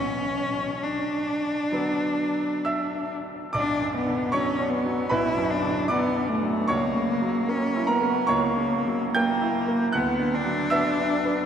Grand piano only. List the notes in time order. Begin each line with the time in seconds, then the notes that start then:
Already playing: B1
1.72 D3 F#3 B3
2.65 E5 E6
3.53 B1 D5 D6
3.81 F#2
4.07 D3
4.32 F#3 C#5 C#6
4.59 D4
4.85 F#3
5.09 B1 B4 B5
5.37 F#2
5.63 D3
5.88 F#3 D5 D6
6.16 D4
6.43 F#3
6.68 C#2 C#5 C#6
6.95 C#3
7.22 F#3
7.49 A#3
7.76 E4
7.87 A#4 A#5
8.02 A#3
8.27 C#2 C#5 C#6
8.56 C#3
8.86 F#3
9.15 A#3 G5 G6
9.41 E4
9.68 A#3
9.93 D2 F#5 F#6
10.20 D3
10.46 F#3
10.70 B3 E5 E6
10.99 D4
11.25 B3